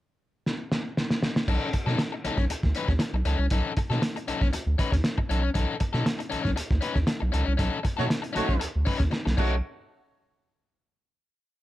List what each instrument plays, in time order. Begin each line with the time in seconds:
0.46 snare
0.71 snare
0.97 snare
1.10 snare
1.22 snare
1.36 snare
1.48 analog synth bass B1, overdriven electric guitar C#4 D#4 A4, kick, crash
1.73 analog synth bass B2, muted overdriven electric guitar stroke, kick, closed hi-hat
1.86 analog synth bass B2, overdriven electric guitar C#4 D#4 A4, snare
1.98 muted overdriven electric guitar stroke, snare, closed hi-hat
2.12 muted overdriven electric guitar stroke
2.24 analog synth bass B1, overdriven electric guitar C#4 D#4 A4, snare, closed hi-hat
2.37 analog synth bass B1, muted overdriven electric guitar stroke, kick, snare
2.50 analog synth bass D2, muted overdriven electric guitar stroke, closed hi-hat
2.63 analog synth bass D2, kick, snare
2.75 overdriven electric guitar C#4 D#4 B4, closed hi-hat
2.88 analog synth bass D#2, muted overdriven electric guitar stroke, kick, snare
2.99 muted overdriven electric guitar stroke, snare, closed hi-hat
3.13 analog synth bass B1, muted overdriven electric guitar stroke
3.25 analog synth bass C#2, overdriven electric guitar C#4 D#4 A4, closed hi-hat
3.39 analog synth bass C2, muted overdriven electric guitar stroke
3.50 analog synth bass B1, overdriven electric guitar C#4 D#4 A4, kick, closed hi-hat
3.77 muted overdriven electric guitar stroke, kick, closed hi-hat
3.90 analog synth bass B2, overdriven electric guitar C#4 D#4 A4, snare
4.02 muted overdriven electric guitar stroke, snare, closed hi-hat
4.16 muted overdriven electric guitar stroke, closed hi-hat
4.28 analog synth bass B1, overdriven electric guitar C#4 D#4 A4, closed hi-hat
4.41 analog synth bass B1, muted overdriven electric guitar stroke, kick, snare
4.53 analog synth bass D2, muted overdriven electric guitar stroke, closed hi-hat
4.66 analog synth bass D2
4.78 overdriven electric guitar C#4 D#4 B4, kick, closed hi-hat
4.92 analog synth bass D#2, muted overdriven electric guitar stroke, kick, snare, closed hi-hat
5.04 snare, closed hi-hat
5.18 muted overdriven electric guitar stroke, kick
5.29 analog synth bass B1, overdriven electric guitar C#4 D#4 A4, closed hi-hat
5.42 muted overdriven electric guitar stroke
5.54 analog synth bass B1, overdriven electric guitar C#4 D#4 A4, kick, closed hi-hat
5.80 analog synth bass B2, muted overdriven electric guitar stroke, kick, closed hi-hat
5.93 analog synth bass B2, overdriven electric guitar C#4 D#4 A4, snare
6.05 muted overdriven electric guitar stroke, snare, closed hi-hat
6.19 muted overdriven electric guitar stroke, closed hi-hat
6.30 analog synth bass B1, overdriven electric guitar C#4 D#4 A4, closed hi-hat
6.43 analog synth bass B1, muted overdriven electric guitar stroke, kick, snare
6.56 analog synth bass D2, muted overdriven electric guitar stroke, closed hi-hat
6.71 analog synth bass D2, kick, snare
6.81 overdriven electric guitar C#4 D#4 B4, closed hi-hat
6.95 analog synth bass D#2, muted overdriven electric guitar stroke, kick, snare
7.07 muted overdriven electric guitar stroke, snare, closed hi-hat
7.20 analog synth bass B1, muted overdriven electric guitar stroke
7.32 analog synth bass C#2, overdriven electric guitar C#4 D#4 A4, closed hi-hat
7.46 analog synth bass C2, muted overdriven electric guitar stroke
7.57 analog synth bass B1, overdriven electric guitar C#4 D#4 A4, kick, closed hi-hat
7.83 analog synth bass B2, muted overdriven electric guitar stroke, kick, closed hi-hat
7.97 analog synth bass B2, horn section A3 F#4 C#5, overdriven electric guitar C#4 D#4 A4, snare
8.08 muted overdriven electric guitar stroke, snare, closed hi-hat
8.22 muted overdriven electric guitar stroke, closed hi-hat
8.33 analog synth bass B1, horn section A3 F#4 C#5, overdriven electric guitar C#4 D#4 A4, snare, closed hi-hat
8.48 analog synth bass B1, muted overdriven electric guitar stroke, kick, snare
8.60 analog synth bass D2, muted overdriven electric guitar stroke, closed hi-hat
8.76 analog synth bass D2
8.85 overdriven electric guitar C#4 D#4 B4, kick, open hi-hat
8.99 analog synth bass D#2, muted overdriven electric guitar stroke, kick, snare, closed hi-hat
9.11 muted overdriven electric guitar stroke, snare
9.25 analog synth bass B1, muted overdriven electric guitar stroke, snare
9.37 analog synth bass B1, horn section A3 F#4 C#5, overdriven electric guitar C#4 D#4 A4, kick, crash